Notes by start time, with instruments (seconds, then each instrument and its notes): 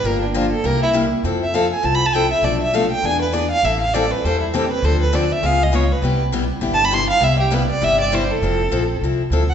0.03 upright bass G1, steel-string acoustic guitar D3 F3 A#3 D4 G4, violin A#4
0.22 violin D4
0.34 steel-string acoustic guitar D3 F3 A#3 D4 G4, violin F4
0.53 violin A4
0.64 upright bass C2, steel-string acoustic guitar C3 G3 A#3 E4 G4, violin A#4
0.83 violin E4
0.93 steel-string acoustic guitar C3 G3 A#3 E4 G4
1.23 upright bass F2, steel-string acoustic guitar F3 C4 E4 A4
1.44 violin E5
1.54 steel-string acoustic guitar F3 C4 E4 A4, violin F5
1.74 violin G#5
1.82 upright bass C2, steel-string acoustic guitar F3 C4 E4 A4, violin A5
1.95 violin B5
2.06 violin A5
2.14 steel-string acoustic guitar F3 C4 E4 A4, violin G5
2.32 violin E5
2.42 upright bass B1, steel-string acoustic guitar B2 F3 A3 D4 A4, violin D5
2.62 violin E5
2.73 steel-string acoustic guitar B2 F3 A3 D4 A4, violin F5
2.91 violin G5
3.03 upright bass E2, steel-string acoustic guitar E3 B3 D4 G#4, violin G#5
3.22 violin B4
3.33 steel-string acoustic guitar E3 B3 D4 G#4, violin D5
3.51 violin F5
3.63 upright bass A1, steel-string acoustic guitar E3 G3 C4 E4 A4, violin E5
3.81 violin F5
3.94 steel-string acoustic guitar E3 G3 C4 E4 A4, violin D5
4.11 violin B4
4.24 upright bass E2, steel-string acoustic guitar E3 G3 C4 E4 A4, violin C5
4.42 violin E4
4.54 steel-string acoustic guitar E3 G3 C4 E4 A4, violin G4
4.71 violin B4
4.82 upright bass D2, steel-string acoustic guitar D3 F3 C4 D4 A4, violin C5
5.03 violin B4
5.13 steel-string acoustic guitar D3 F3 C4 D4 A4, violin D5
5.33 violin E5
5.43 upright bass C#2, steel-string acoustic guitar C#3 G#3 B3 F4 G#4, violin F5
5.63 violin D#5
5.72 steel-string acoustic guitar C#3 G#3 B3 F4 G#4, violin C#5
5.92 violin B4
6.02 upright bass C2, steel-string acoustic guitar C3 G3 B3 E4 G4
6.32 steel-string acoustic guitar C3 G3 B3 E4 G4
6.61 upright bass G1, steel-string acoustic guitar C3 G3 B3 E4 G4
6.74 violin A5
6.85 violin B5
6.91 steel-string acoustic guitar C3 G3 B3 E4 G4, violin C6
7.10 violin F5
7.20 upright bass C2, steel-string acoustic guitar C3 G3 B3 E4 G4, violin E5
7.40 violin G4
7.51 steel-string acoustic guitar C3 G3 B3 E4 G4, violin B4
7.70 violin D5
7.81 upright bass G1, steel-string acoustic guitar C3 G3 B3 E4 G4, violin E5
8.01 violin D5
8.12 steel-string acoustic guitar C3 G3 B3 E4 G4, violin C5
8.31 violin A4
8.42 upright bass F1, steel-string acoustic guitar F3 C4 E4 A4
8.71 upright bass A#1, steel-string acoustic guitar F3 C4 E4 A4
9.01 upright bass C2, steel-string acoustic guitar F3 C4 E4
9.05 steel-string acoustic guitar A4
9.30 upright bass D2, steel-string acoustic guitar F3 C4 E4 A4
9.50 violin F#5